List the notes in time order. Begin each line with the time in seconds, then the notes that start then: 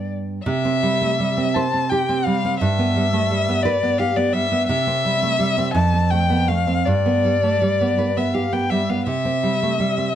Already playing: G2 G3 B3
0.45 C3 E5
0.65 C4
0.83 G3
1.01 A3
1.20 G3
1.37 C4
1.54 C5 A5
1.74 C4
1.90 G4 G5
2.09 C4
2.25 G3 F5
2.45 C4
2.60 G2 E5
2.79 B3
2.96 G3
3.13 A3
3.31 G3
3.48 B3
3.63 B4 D5
3.83 B3
3.98 G4 F5
4.16 B3 D5
4.33 G3 E5
4.52 B3
4.67 C3 E5
4.87 C4
5.05 G3
5.22 A3
5.39 G3
5.58 C4
5.74 F2 A5
5.94 C4
6.10 A3 G5
6.30 B3
6.48 A3 F5
6.67 C4
6.86 G2 D5
7.06 B3
7.25 G3
7.43 A3
7.62 G3
7.81 B3
7.98 B4
8.17 B3 E5
8.34 G4 F5
8.53 B3 G5
8.70 G3 E5
8.89 B3 F5
9.06 C3 E5
9.25 C4
9.43 G3
9.62 A3
9.80 G3
9.98 C4